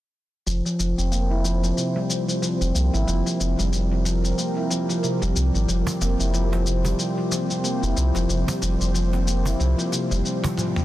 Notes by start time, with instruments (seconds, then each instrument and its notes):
0.47 sub bass F1, handpan F3, ambient pad F3 C4 G4 C5, cabasa
0.65 handpan F3, cabasa
0.79 sub bass F1, handpan F3, cabasa
0.98 sub bass F1, handpan C4, cabasa
1.12 handpan A#3, cabasa
1.31 handpan E4
1.45 handpan F3, cabasa
1.63 handpan F3, cabasa
1.77 handpan C3, cabasa
1.96 handpan G3
2.10 handpan F3, cabasa
2.28 handpan F3, cabasa
2.42 handpan F3, cabasa
2.61 sub bass F1, handpan C4, cabasa
2.75 sub bass C2, handpan A#3, cabasa
2.94 sub bass G#1, handpan E4, cabasa
3.07 sub bass F1, handpan F3, ambient pad A#4, cabasa
3.26 handpan F3, cabasa
3.40 sub bass F1, handpan C3, cabasa
3.59 sub bass F1, handpan G3, cabasa
3.73 handpan F3, cabasa
3.92 handpan F3
4.05 handpan F3, cabasa
4.24 handpan C4, cabasa
4.38 handpan A#3, cabasa
4.57 handpan E4
4.70 handpan F3, cabasa
4.89 handpan F3, cabasa
5.03 handpan C3, cabasa
5.22 sub bass F1, handpan G3, cabasa
5.36 sub bass C2, handpan F3, cabasa
5.55 sub bass G#1, handpan F3, cabasa
5.68 sub bass F1, handpan F3, ambient pad A#3 C4 C5, cabasa
5.87 handpan C4, cajon bass, cabasa
6.01 sub bass F1, handpan A#3, cajon slap, cabasa
6.20 sub bass F1, handpan E4, cabasa
6.34 handpan F3, cabasa
6.52 handpan F3, cajon slap
6.66 handpan C3, cabasa
6.85 handpan G3, cajon bass, cabasa
6.99 handpan F3, cabasa
7.18 handpan F3
7.32 handpan F3, cajon slap, cabasa
7.50 handpan C4, cabasa
7.64 handpan A#3, cabasa
7.83 sub bass F1, handpan E4, cabasa
7.97 sub bass C2, handpan F3, cabasa
8.15 sub bass F1, handpan F3, cajon slap, cabasa
8.29 sub bass F1, handpan C3, cabasa
8.48 handpan G3, cajon bass, cabasa
8.62 sub bass F1, handpan F3, cajon slap, cabasa
8.81 sub bass F1, handpan F3, cabasa
8.95 handpan F3, cabasa
9.13 handpan C4, cajon slap
9.27 handpan A#3, cabasa
9.45 handpan E4, cajon bass, cabasa
9.60 sub bass C2, handpan F3, cabasa
9.78 handpan F3, cabasa
9.92 handpan C3, cajon slap, cabasa
10.11 sub bass F1, handpan G3, cabasa
10.25 handpan F3, cabasa
10.44 handpan F3, cajon bass, cajon slap, high tom, cabasa
10.58 handpan F3, mid tom, cabasa
10.76 handpan C4, mid tom, cabasa